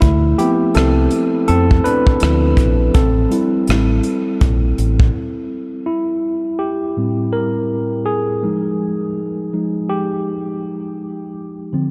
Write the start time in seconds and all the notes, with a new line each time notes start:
0.01 D2 A3 E4, kick, closed hi-hat
0.38 F3 B3 C4 E4 G4, closed hi-hat
0.74 C2 C4 A4, cross-stick, closed hi-hat
1.10 closed hi-hat
1.48 F2 C4 A4, closed hi-hat
1.71 kick
1.84 D4 B4, closed hi-hat
2.07 kick
2.20 D2 F3 C4 E4, cross-stick, closed hi-hat
2.57 A#1, kick, closed hi-hat
2.94 A1 C4 A4, kick, closed hi-hat
3.30 G3 C4 E4, closed hi-hat
3.67 A1, cross-stick, closed hi-hat
4.03 closed hi-hat
4.41 A#1, kick, closed hi-hat
4.78 A1, closed hi-hat
5.00 kick
5.86 E4
6.59 G4
6.97 A2 G3 C4
7.33 A#4
8.06 G#4
8.43 F3 G#3 D#4
9.53 F3 G#3 D#4
9.89 G4
11.73 D3 F3 C4